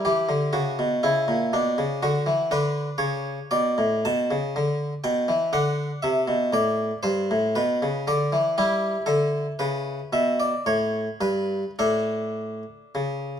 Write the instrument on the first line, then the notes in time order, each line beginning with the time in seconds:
harpsichord
Already playing: E4
0.05 E3 G4
0.29 D3
0.53 C#3 F#4
0.79 B2
1.03 C#3 E4
1.28 A#2
1.53 B2 D4
1.78 C#3
2.03 D3 F#4
2.26 E3
2.51 D3 D4 B4
2.98 C#3 C#5
3.51 B2 D5
3.78 A2
4.05 B2 A5
4.31 C#3
4.56 D3
5.04 B2 G5
5.28 E3
5.53 D3 D4 F#5
6.03 C3 E5
6.28 B2
6.53 A2 D5
7.03 G2 C5
7.31 A2
7.55 B2 B4
7.82 C#3
8.08 D3 D5
8.32 E3
8.58 G3 E4 G4
9.06 D3 A4
9.59 C#3 B4
10.13 B2 E5
10.40 D5
10.66 A2 C#5
11.21 G2 B4
11.79 A2 D4 A4
12.95 C#3